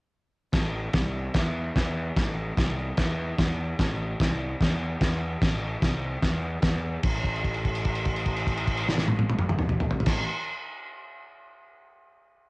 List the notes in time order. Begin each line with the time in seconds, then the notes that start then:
0.53 A1, kick, snare, crash
0.93 C2, kick, snare, crash
1.34 E2, kick, snare, crash
1.76 E2, kick, snare, crash
2.16 A1, kick, snare, crash
2.57 C2, kick, snare, crash
2.97 E2, kick, snare, crash
3.38 E2, kick, snare, crash
3.79 A1, kick, snare, crash
4.20 C2, kick, snare, crash
4.61 E2, kick, snare, crash
5.01 E2, kick, snare, crash
5.42 A1, kick, snare, crash
5.82 C2, kick, snare, crash
6.22 E2, kick, snare, crash
6.62 E2, kick, snare, crash
7.03 A1, kick, crash
7.24 kick, crash
7.36 crash
7.44 kick, crash
7.54 crash
7.65 kick, crash
7.75 crash
7.85 kick, crash
7.95 crash
8.05 kick, crash
8.16 crash
8.25 kick, crash
8.36 crash
8.47 kick, crash
8.57 crash
8.67 kick, crash
8.77 crash
8.88 snare
8.98 snare
9.08 high tom
9.19 high tom
9.30 high tom
9.39 mid tom
9.49 mid tom
9.59 mid tom
9.69 mid tom
9.80 mid tom
9.91 floor tom
10.00 floor tom
10.06 A1, kick, snare, crash